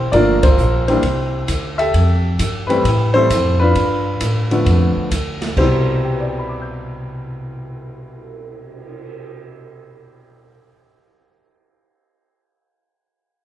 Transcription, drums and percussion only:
0.13 kick soft
0.13 ride medium
0.43 kick medium
0.43 ride medium
0.58 hi-hat pedal medium
0.88 ride soft
1.03 kick soft
1.03 ride medium
1.48 kick soft
1.48 hi-hat pedal medium
1.48 ride medium
1.79 ride soft
1.94 kick soft
1.94 ride medium
2.39 kick soft
2.39 hi-hat pedal medium
2.39 ride medium
2.70 ride soft
2.85 kick soft
2.85 ride medium
3.30 kick soft
3.30 hi-hat pedal medium
3.30 ride medium
3.75 kick soft
3.75 ride medium
4.21 kick soft
4.21 hi-hat pedal medium
4.21 ride medium
4.51 ride soft
4.66 kick soft
4.66 ride soft
5.11 kick soft
5.11 hi-hat pedal medium
5.11 ride medium
5.42 snare soft
5.42 ride soft
5.57 kick soft
5.57 crash medium
5.87 cymbal swell soft

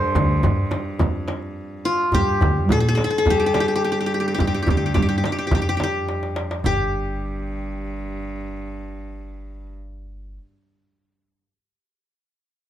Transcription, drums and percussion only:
0.15 frame drum medium
0.15 darbuka dum medium
0.43 darbuka dum medium
0.43 frame drum medium
0.71 darbuka tek medium
0.71 frame drum medium
0.99 darbuka dum medium
0.99 frame drum medium
1.28 darbuka tek medium
1.28 frame drum medium
1.43 darbuka ka soft
2.12 darbuka dum medium
2.12 frame drum medium
2.41 darbuka dum medium
2.41 frame drum loud
2.69 darbuka dum medium
2.69 frame drum loud
2.98 darbuka tek medium
2.98 frame drum medium
3.26 darbuka dum medium
3.26 frame drum medium
3.54 darbuka tek medium
3.54 frame drum medium
3.68 darbuka ka soft
4.39 darbuka dum medium
4.39 frame drum medium
4.67 darbuka dum medium
4.67 frame drum medium
4.95 darbuka dum medium
4.95 frame drum medium
5.24 darbuka tek medium
5.24 frame drum medium
5.51 darbuka dum medium
5.51 frame drum medium
5.66 darbuka ka soft
5.80 darbuka tek medium
5.80 frame drum medium
5.95 darbuka ka soft
6.09 darbuka tek medium
6.23 darbuka ka medium
6.36 darbuka tek medium
6.51 darbuka ka medium
6.64 frame drum medium
6.64 darbuka dum medium

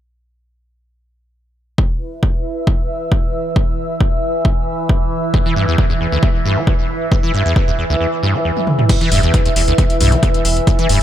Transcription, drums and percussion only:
1.78 kick loud
2.23 kick loud
2.67 kick loud
3.12 kick loud
3.56 kick loud
4.00 kick loud
4.45 kick loud
4.89 kick loud
5.34 kick loud
5.78 kick loud
6.23 kick loud
6.67 kick loud
7.12 kick loud
7.56 kick loud
8.57 high tom soft
8.67 mid tom medium
8.79 mid tom medium
8.89 kick loud
8.89 closed hi-hat medium
8.89 crash medium
9.01 closed hi-hat medium
9.12 open hi-hat loud
9.23 closed hi-hat medium
9.34 kick loud
9.34 closed hi-hat medium
9.46 closed hi-hat medium
9.56 open hi-hat loud
9.68 closed hi-hat medium
9.78 kick loud
9.78 closed hi-hat medium
9.90 closed hi-hat medium
10.01 open hi-hat loud
10.12 closed hi-hat medium
10.23 kick loud
10.23 closed hi-hat medium
10.34 closed hi-hat medium
10.45 open hi-hat loud
10.57 closed hi-hat medium
10.67 kick loud
10.67 closed hi-hat medium
10.79 closed hi-hat medium
10.89 open hi-hat loud

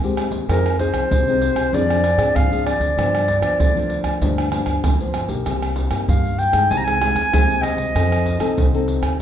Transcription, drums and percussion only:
0.04 pandeiro soft
0.04 shaker soft
0.17 pandeiro medium
0.17 tamborim medium
0.32 pandeiro medium
0.32 shaker medium
0.32 surdo soft
0.49 pandeiro medium
0.49 tamborim medium
0.49 shaker medium
0.49 surdo soft
0.66 pandeiro soft
0.66 tamborim medium
0.66 shaker soft
0.79 pandeiro medium
0.79 surdo soft
0.94 pandeiro medium
0.94 tamborim medium
0.94 shaker medium
1.12 pandeiro medium
1.12 shaker medium
1.12 surdo medium
1.28 pandeiro soft
1.28 shaker soft
1.42 pandeiro medium
1.42 shaker medium
1.56 pandeiro medium
1.56 tamborim medium
1.56 shaker medium
1.56 surdo soft
1.74 pandeiro medium
1.74 shaker medium
1.74 surdo medium
1.90 pandeiro soft
1.90 tamborim medium
1.90 shaker soft
2.04 pandeiro medium
2.04 tamborim medium
2.19 pandeiro medium
2.19 tamborim medium
2.19 shaker medium
2.19 surdo soft
2.36 pandeiro medium
2.36 tamborim medium
2.36 shaker medium
2.36 surdo medium
2.52 pandeiro soft
2.52 shaker soft
2.67 pandeiro medium
2.67 tamborim medium
2.67 surdo soft
2.81 pandeiro medium
2.81 shaker medium
2.81 surdo soft
2.99 pandeiro medium
2.99 tamborim medium
2.99 shaker medium
2.99 surdo medium
3.15 pandeiro soft
3.15 tamborim medium
3.15 shaker soft
3.28 pandeiro medium
3.28 shaker medium
3.28 surdo soft
3.43 pandeiro medium
3.43 tamborim medium
3.43 shaker medium
3.60 pandeiro medium
3.60 shaker medium
3.60 surdo medium
3.76 pandeiro soft
3.76 shaker soft
3.90 pandeiro medium
4.04 pandeiro medium
4.04 tamborim medium
4.04 shaker medium
4.04 surdo soft
4.22 pandeiro medium
4.22 shaker medium
4.22 surdo medium
4.38 pandeiro soft
4.38 tamborim medium
4.38 shaker soft
4.52 pandeiro medium
4.52 tamborim medium
4.66 pandeiro soft
4.66 tamborim medium
4.66 shaker medium
4.66 surdo soft
4.84 pandeiro medium
4.84 tamborim medium
4.84 shaker medium
4.84 surdo loud
5.00 pandeiro soft
5.00 shaker soft
5.14 pandeiro medium
5.14 tamborim medium
5.29 pandeiro medium
5.29 shaker medium
5.29 surdo soft
5.46 pandeiro medium
5.46 tamborim medium
5.46 shaker medium
5.46 surdo medium
5.62 pandeiro soft
5.62 tamborim medium
5.62 shaker soft
5.76 pandeiro medium
5.76 surdo soft
5.91 pandeiro medium
5.91 tamborim medium
5.91 shaker medium
6.09 pandeiro medium
6.09 shaker medium
6.09 surdo medium
6.25 pandeiro soft
6.25 shaker soft
6.39 pandeiro medium
6.39 shaker medium
6.53 pandeiro medium
6.53 tamborim medium
6.53 shaker medium
6.53 surdo soft
6.71 pandeiro medium
6.71 shaker medium
6.71 surdo medium
6.88 pandeiro soft
6.88 tamborim medium
6.88 shaker soft
7.02 pandeiro medium
7.02 tamborim medium
7.16 pandeiro medium
7.16 tamborim medium
7.16 shaker medium
7.16 surdo soft
7.34 pandeiro medium
7.34 tamborim medium
7.34 shaker medium
7.34 surdo loud
7.50 pandeiro soft
7.50 shaker soft
7.63 pandeiro medium
7.63 tamborim medium
7.63 shaker medium
7.78 pandeiro medium
7.78 shaker medium
7.78 surdo soft
7.96 pandeiro medium
7.96 tamborim medium
7.96 shaker medium
7.96 surdo medium
8.12 pandeiro soft
8.12 tamborim medium
8.12 shaker soft
8.26 pandeiro medium
8.26 shaker medium
8.26 surdo soft
8.40 pandeiro medium
8.40 tamborim medium
8.40 shaker medium
8.58 pandeiro medium
8.58 shaker medium
8.58 surdo medium
8.75 pandeiro soft
8.75 shaker soft
8.88 pandeiro medium
9.03 pandeiro medium
9.03 tamborim medium
9.03 shaker medium
9.03 surdo soft

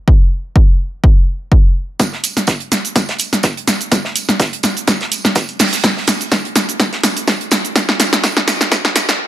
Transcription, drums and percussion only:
0.08 kick loud
0.56 kick loud
1.04 kick loud
1.52 kick loud
1.99 kick loud
1.99 snare soft
1.99 closed hi-hat medium
1.99 tambourine medium
1.99 cabasa soft
2.13 snare soft
2.24 open hi-hat loud
2.24 tambourine medium
2.24 cabasa medium
2.37 snare soft
2.37 closed hi-hat medium
2.37 cabasa soft
2.47 kick loud
2.47 snare loud
2.47 closed hi-hat medium
2.47 tambourine medium
2.47 cabasa soft
2.60 closed hi-hat soft
2.72 snare soft
2.72 open hi-hat loud
2.72 tambourine medium
2.72 cabasa medium
2.85 closed hi-hat medium
2.85 cabasa soft
2.96 kick loud
2.96 snare medium
2.96 closed hi-hat medium
2.96 tambourine medium
2.96 cabasa soft
3.09 snare medium
3.09 closed hi-hat soft
3.19 open hi-hat loud
3.19 tambourine medium
3.19 cabasa medium
3.33 snare soft
3.33 closed hi-hat medium
3.33 cabasa soft
3.43 kick loud
3.43 snare loud
3.43 closed hi-hat medium
3.43 tambourine medium
3.43 cabasa soft
3.57 closed hi-hat soft
3.67 snare medium
3.67 open hi-hat loud
3.67 tambourine medium
3.67 cabasa medium
3.81 closed hi-hat medium
3.81 cabasa soft
3.92 kick loud
3.92 snare medium
3.92 closed hi-hat medium
3.92 tambourine medium
3.92 cabasa soft
4.05 snare medium
4.16 open hi-hat loud
4.16 tambourine medium
4.16 cabasa medium
4.29 snare medium
4.29 closed hi-hat medium
4.29 cabasa soft
4.40 kick loud
4.40 snare loud
4.40 closed hi-hat medium
4.40 tambourine medium
4.40 cabasa soft
4.53 closed hi-hat soft
4.63 snare medium
4.63 open hi-hat loud
4.63 tambourine medium
4.63 cabasa medium
4.77 closed hi-hat medium
4.77 cabasa soft
4.87 kick loud
4.87 snare medium
4.87 closed hi-hat medium
4.87 tambourine medium
4.87 cabasa soft
5.01 snare medium
5.01 closed hi-hat soft
5.12 open hi-hat loud
5.12 tambourine medium
5.12 cabasa medium
5.24 snare medium
5.24 closed hi-hat medium
5.24 cabasa soft
5.35 kick loud
5.35 snare loud
5.35 closed hi-hat medium
5.35 tambourine medium
5.35 cabasa soft
5.49 closed hi-hat soft
5.59 snare medium
5.59 open hi-hat medium
5.59 open hi-hat loud
5.59 cabasa medium
5.73 snare soft
5.73 closed hi-hat medium
5.73 cabasa soft
5.84 kick loud
5.84 snare medium
5.84 closed hi-hat medium
5.84 tambourine medium
5.84 cabasa soft
5.97 snare soft
6.07 snare medium
6.07 open hi-hat loud
6.07 tambourine medium
6.07 cabasa medium
6.21 closed hi-hat medium
6.21 cabasa soft
6.32 kick loud
6.32 snare loud
6.32 snare medium
6.32 closed hi-hat medium
6.32 tambourine medium
6.32 cabasa soft
6.45 closed hi-hat soft
6.55 snare medium
6.55 open hi-hat loud
6.55 tambourine medium
6.55 cabasa medium
6.69 closed hi-hat soft
6.69 cabasa soft
6.80 kick loud
6.80 snare medium
6.80 closed hi-hat medium
6.80 tambourine medium
6.80 cabasa soft
6.93 snare medium
6.93 closed hi-hat soft
7.03 snare medium
7.03 open hi-hat loud
7.03 tambourine medium
7.03 cabasa medium
7.17 closed hi-hat medium
7.17 cabasa soft
7.27 kick loud
7.27 snare medium
7.27 snare loud
7.27 closed hi-hat medium
7.27 tambourine medium
7.27 cabasa soft
7.41 closed hi-hat soft
7.51 snare medium
7.51 open hi-hat loud
7.51 tambourine medium
7.51 cabasa medium
7.65 closed hi-hat soft
7.65 cabasa soft
7.76 kick loud
7.76 snare medium
7.76 closed hi-hat medium
7.76 tambourine medium
7.76 cabasa soft
7.89 snare medium
8.00 snare medium
8.00 open hi-hat loud
8.00 tambourine medium
8.00 cabasa medium
8.13 snare medium
8.13 closed hi-hat medium
8.13 cabasa soft
8.23 kick loud
8.23 snare loud
8.23 closed hi-hat medium
8.23 tambourine loud
8.23 cabasa soft
8.37 snare medium
8.37 closed hi-hat soft
8.48 snare loud
8.48 open hi-hat loud
8.48 tambourine medium
8.48 cabasa medium
8.61 snare medium
8.61 closed hi-hat soft
8.61 cabasa soft
8.72 kick loud
8.72 snare loud
8.72 closed hi-hat medium
8.72 tambourine medium
8.72 cabasa soft
8.84 snare medium
8.84 closed hi-hat soft
8.96 snare loud
8.96 open hi-hat loud
8.96 tambourine medium
8.96 cabasa medium
9.09 snare medium
9.09 closed hi-hat soft
9.09 cabasa soft

